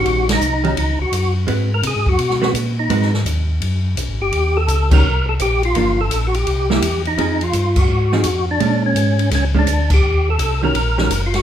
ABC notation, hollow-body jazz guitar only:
X:1
M:4/4
L:1/8
Q:"Swing" 1/4=168
K:Ab
V:1 name="Hollow-body jazz guitar"
[E,G,D^F] z2 [E,G,DF] z4 | [A,C_G=B] z4 [A,CGB] z2 | [A,C_G=B] z6 z | z3 [E,G,D^F] z4 |
[F,B,=D] z4 [G,B,=E] z2 | [F,CEA] z4 [F,CEA] z2 | [A,^C]3 z2 [A,C=D] z2 | z3 [E,G,D^F] z [E,G,DF] z2 |]